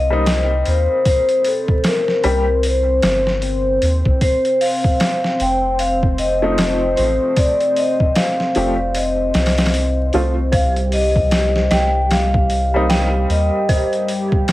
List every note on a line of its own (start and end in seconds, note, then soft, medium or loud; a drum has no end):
0.00 0.63 C2 loud
0.00 10.55 C4 medium
0.00 10.55 C5 medium
0.00 0.63 D#5 loud
0.10 2.20 G3 medium
0.10 2.20 A#3 medium
0.10 2.21 C4 medium
0.10 2.21 D#4 loud
0.26 snare loud
0.26 open hi-hat medium
0.65 0.87 D#2 medium
0.65 1.08 C5 medium
0.65 open hi-hat medium
1.05 1.48 C5 loud
1.05 kick loud
1.05 open hi-hat medium
1.29 closed hi-hat soft
1.45 1.87 A4 medium
1.45 open hi-hat medium
1.68 kick loud
1.84 2.61 A#4 medium
1.84 snare loud
1.84 open hi-hat medium
2.08 snare soft
2.24 3.00 C2 loud
2.24 2.43 G3 medium
2.24 2.43 A#3 medium
2.24 2.43 C4 medium
2.24 2.44 G4 loud
2.24 open hi-hat medium
2.63 3.80 C5 medium
2.63 open hi-hat medium
3.02 3.79 G1 medium
3.02 snare loud
3.02 open hi-hat medium
3.27 snare soft
3.42 open hi-hat medium
3.82 4.03 D#2 medium
3.82 open hi-hat medium
4.05 4.19 C2 loud
4.05 kick medium
4.21 4.62 C5 loud
4.21 kick loud
4.21 open hi-hat medium
4.45 closed hi-hat soft
4.61 5.42 F5 loud
4.61 open hi-hat medium
4.84 kick medium
5.00 snare loud
5.00 open hi-hat medium
5.24 snare medium
5.40 6.95 F1 loud
5.40 5.77 G5 loud
5.40 open hi-hat medium
5.79 5.97 F5 loud
5.79 open hi-hat medium
6.03 kick medium
6.18 7.00 D#5 loud
6.18 open hi-hat medium
6.42 8.52 F3 medium
6.42 8.52 A3 medium
6.42 8.52 C4 medium
6.42 8.53 D#4 medium
6.58 snare loud
6.58 open hi-hat medium
6.97 7.19 A1 medium
6.97 7.38 C5 medium
6.97 open hi-hat medium
7.36 7.78 D5 loud
7.36 kick loud
7.36 open hi-hat medium
7.61 closed hi-hat soft
7.76 8.18 D#5 medium
7.76 open hi-hat medium
8.00 kick loud
8.15 8.97 F5 loud
8.15 snare loud
8.15 open hi-hat medium
8.40 snare soft
8.55 9.32 F1 medium
8.55 8.75 F3 medium
8.55 8.75 A3 medium
8.55 8.76 C4 medium
8.55 8.76 G4 loud
8.55 open hi-hat medium
8.95 10.10 D#5 medium
8.95 open hi-hat medium
9.34 10.10 C2 loud
9.34 snare medium
9.34 open hi-hat medium
9.46 snare medium
9.46 open hi-hat medium
9.58 snare medium
9.58 open hi-hat medium
9.66 snare medium
9.66 open hi-hat medium
9.74 open hi-hat medium
10.13 11.68 C2 medium
10.13 10.33 F3 medium
10.13 10.33 A3 medium
10.13 10.33 C4 medium
10.13 10.33 F4 medium
10.13 open hi-hat medium
10.52 14.52 G3 medium
10.52 14.52 G4 medium
10.52 11.68 C5 medium
10.52 10.71 F5 loud
10.52 kick loud
10.52 open hi-hat medium
10.76 closed hi-hat soft
10.92 11.74 D#5 medium
10.92 open hi-hat medium
11.16 kick loud
11.31 snare loud
11.31 open hi-hat medium
11.56 snare medium
11.71 13.26 C2 loud
11.71 11.97 D#5 medium
11.71 12.12 G5 loud
11.71 snare loud
11.71 open hi-hat medium
12.11 13.26 F5 loud
12.11 snare loud
12.11 open hi-hat medium
12.34 kick loud
12.50 open hi-hat medium
12.74 14.52 G3 medium
12.74 14.52 A#3 medium
12.74 14.52 C4 medium
12.74 14.52 D#4 loud
12.90 13.65 G5 loud
12.90 snare loud
12.90 open hi-hat medium
13.29 13.50 D#2 medium
13.29 14.05 D#5 medium
13.29 open hi-hat medium
13.69 14.52 C5 medium
13.69 kick loud
13.69 open hi-hat medium
13.93 closed hi-hat soft
14.08 open hi-hat medium
14.32 kick medium
14.48 snare loud
14.48 open hi-hat medium